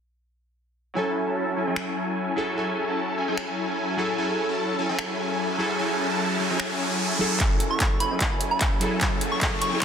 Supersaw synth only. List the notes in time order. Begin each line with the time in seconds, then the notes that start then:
0.96 F#3 C#4 E4 A4 G#5
1.27 F#3 C#4 E4 A4 A5
1.56 F#3 C#4 E4 A4 G#5
1.67 F#3 C#4 E4 A4 G#5
2.37 F#3 C#4 E4 A4 G#5
2.57 F#3 C#4 E4 A4 G#5
2.88 F#3 C#4 E4 A4 A5
3.17 F#3 C#4 E4 A4 G#5
3.28 F#3 C#4 E4 A4 G#5
3.98 F#3 C#4 E4 A4 G#5
4.18 F#3 C#4 E4 A4 G#5
4.49 F#3 C#4 E4 A4 A5
4.79 F#3 C#4 E4 A4 G#5
4.89 F#3 C#4 E4 A4 G#5
5.59 F#3 C#4 E4 A4 G#5
5.79 F#3 C#4 E4 A4 G#5
6.10 F#3 C#4 E4 A4 A5
6.39 F#3 C#4 E4 A4 G#5
6.50 F#3 C#4 E4 A4 G#5
7.20 F#3 C#4 E4 A4 G#5
7.40 F#3 C#4 E4 A4 G#5
7.71 F#3 C#4 E4 A4 A5
8.01 F#3 C#4 E4 A4 G#5
8.11 F#3 C#4 E4 A4 G#5
8.81 F#3 C#4 E4 A4 G#5
9.01 F#3 C#4 E4 A4 G#5
9.32 F#3 C#4 E4 A4 A5
9.62 F#3 C#4 E4 A4 G#5
9.72 F#3 C#4 E4 A4 G#5